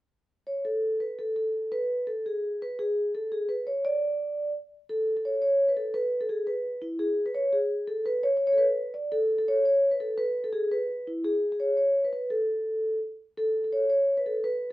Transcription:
0.47 0.63 C#5 medium
0.65 1.01 A4 medium
1.00 1.19 B4 medium
1.19 1.35 A4 medium
1.36 1.72 A4 medium
1.72 2.08 B4 loud
2.07 2.25 A4 medium
2.26 2.62 G#4 medium
2.62 2.79 B4 medium
2.79 3.11 G#4 medium
3.15 3.32 A4 medium
3.32 3.49 G#4 medium
3.49 3.67 B4 medium
3.67 3.85 C#5 medium
3.85 4.51 D5 loud
4.89 5.14 A4 medium
5.17 5.26 A4 medium
5.25 5.41 C#5 medium
5.42 5.70 C#5 medium
5.68 5.77 B4 medium
5.77 5.96 A4 medium
5.94 6.22 B4 loud
6.21 6.31 A4 medium
6.29 6.47 G#4 medium
6.47 6.84 B4 medium
6.82 7.01 E4 medium
6.99 7.25 G#4 medium
7.26 7.36 B4 medium
7.34 7.54 C#5 medium
7.53 7.90 G#4 medium
7.88 8.05 A4 medium
8.06 8.25 B4 loud
8.23 8.35 C#5 loud
8.37 8.46 C#5 medium
8.47 8.59 C#5 loud
8.53 8.60 A4 medium
8.58 8.92 B4 medium
8.94 9.13 D5 medium
9.12 9.37 A4 loud
9.39 9.49 A4 medium
9.48 9.64 C#5 loud
9.65 9.91 C#5 medium
9.91 10.01 B4 medium
10.00 10.19 A4 medium
10.18 10.46 B4 loud
10.44 10.53 A4 medium
10.53 10.72 G#4 medium
10.71 11.09 B4 medium
11.07 11.24 E4 medium
11.24 11.51 G#4 loud
11.52 11.61 G#4 medium
11.60 11.76 C#5 medium
11.77 12.05 C#5 medium
12.04 12.12 B4 medium
12.13 12.32 B4 medium
12.30 12.98 A4 medium
13.37 13.63 A4 medium
13.64 13.73 A4 medium
13.73 13.89 C#5 medium
13.90 14.18 C#5 medium
14.17 14.26 B4 medium
14.26 14.43 A4 medium
14.44 14.71 B4 loud

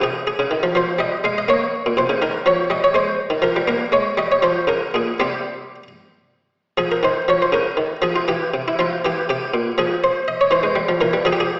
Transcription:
0.01 0.28 C3 medium
0.01 0.26 G#4 medium
0.27 0.69 G#4 medium
0.39 0.51 C#3 medium
0.51 0.63 D#3 medium
0.63 0.74 F3 medium
0.75 0.93 F3 medium
0.75 0.97 C5 medium
0.99 1.16 G3 medium
0.99 1.24 D#5 medium
1.24 1.41 G#3 medium
1.24 1.37 F5 medium
1.38 1.49 D#5 medium
1.48 1.75 A#3 medium
1.48 1.97 C#5 medium
1.86 1.97 A#2 medium
1.97 2.08 C3 medium
1.97 2.18 C5 medium
2.09 2.21 C#3 medium
2.22 2.39 D#3 medium
2.22 2.46 A#4 medium
2.46 2.63 F3 medium
2.46 2.67 C#5 medium
2.70 2.88 G3 medium
2.70 2.83 D#5 medium
2.84 2.95 C#5 medium
2.95 3.21 G#3 medium
2.95 3.44 C5 medium
3.30 3.42 D#3 medium
3.42 3.54 F3 medium
3.42 3.67 A#4 medium
3.56 3.68 G3 medium
3.67 3.85 A#3 medium
3.67 3.89 A#4 medium
3.92 4.10 G#3 medium
3.92 4.14 C#5 medium
4.18 4.36 G3 medium
4.18 4.31 D#5 medium
4.32 4.44 C#5 medium
4.43 4.61 F3 medium
4.43 4.69 C5 medium
4.68 4.87 C#3 soft
4.68 4.91 A#4 medium
4.94 5.13 A#2 medium
4.94 5.17 G#4 medium
5.20 5.75 C3 soft
5.20 5.83 G3 soft
5.20 5.83 C4 soft
5.20 5.87 G4 medium
6.77 6.96 F3 soft
6.77 6.91 G#4 medium
6.92 7.04 A#4 soft
7.03 7.21 D#3 medium
7.03 7.29 C5 medium
7.28 7.46 F3 medium
7.28 7.42 C#5 medium
7.42 7.54 C5 medium
7.52 7.71 C#3 medium
7.52 8.04 A#4 medium
7.77 7.96 D#3 soft
8.02 8.21 F3 medium
8.02 8.16 G#4 medium
8.16 8.29 F4 medium
8.28 8.47 E3 medium
8.28 8.61 G4 medium
8.54 8.72 C3 medium
8.68 8.80 E4 medium
8.79 8.97 F3 medium
8.79 9.01 F4 medium
9.04 9.22 E3 medium
9.04 9.29 G4 medium
9.29 9.47 C3 medium
9.29 9.78 G4 medium
9.54 9.71 A#2 medium
9.78 10.31 F3 medium
9.78 9.99 G#4 medium
10.04 10.24 C5 medium
10.28 10.40 D#5 medium
10.41 10.53 C#5 medium
10.51 10.63 E3 medium
10.51 11.02 C5 medium
10.63 10.76 G#3 medium
10.76 10.88 G3 medium
10.89 11.01 F3 medium
11.01 11.13 E3 medium
11.01 11.26 A#4 medium
11.13 11.25 G3 medium
11.25 11.60 F3 medium
11.25 11.33 G#4 loud
11.33 11.40 G4 medium
11.40 11.60 G#4 medium

